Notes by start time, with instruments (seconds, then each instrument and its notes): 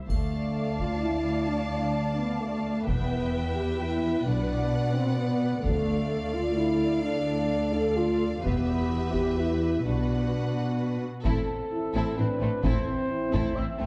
0.08 cello section D2, double bass section D2, french horn section A3, viola section D5, violin section F5 A5, taiko, triangle
0.78 french horn section F4, taiko
1.01 french horn section E4
1.49 french horn section D4
2.18 french horn section B3
2.41 french horn section A3
2.87 double bass section E1, cello section E2, french horn section B3, viola section B4, violin section E5 G5, taiko
3.55 french horn section G4
3.80 french horn section E4
4.26 double bass section B1, cello section B2, french horn section D4, violin section D5 F#5
4.94 french horn section C4
5.16 french horn section B3
5.65 cello section D2, double bass section D2, french horn section A3, viola section A4, violin section D5 F5, taiko
6.35 french horn section F4
6.56 french horn section E4
7.03 french horn section D4
7.74 french horn section A4
7.97 french horn section F4
8.44 double bass section E1, cello section E2, french horn section B3, viola section G4, violin section B4 E5, taiko
9.13 french horn section G4, taiko
9.40 french horn section E4
9.84 double bass section B1, cello section B2, french horn section D4, viola section F#4, violin section F#5
11.23 double bass section A1, cello section A2, trombone section E3 C4, viola section C4, violin section E4 A4, trumpet section A4, taiko
11.73 french horn section E4
11.94 double bass section A1, cello section A2, viola section C4, violin section E4 A4
12.17 double bass section A1, cello section A2, viola section C4, violin section C4 E4, french horn section D4, trumpet section B4
12.40 double bass section A1, cello section A2, violin section A3 C4, viola section C4
12.64 double bass section A1, cello section A2, viola section C4, french horn section C4, violin section E4 A4, trumpet section C5, taiko
13.10 french horn section E4
13.32 double bass section A1, cello section A2, viola section C4, violin section E4 A4, taiko
13.56 double bass section A1, cello section A2, viola section C4, violin section C4 E4, french horn section C4, trumpet section E5
13.78 double bass section A1, cello section A2, violin section A3 C4, viola section C4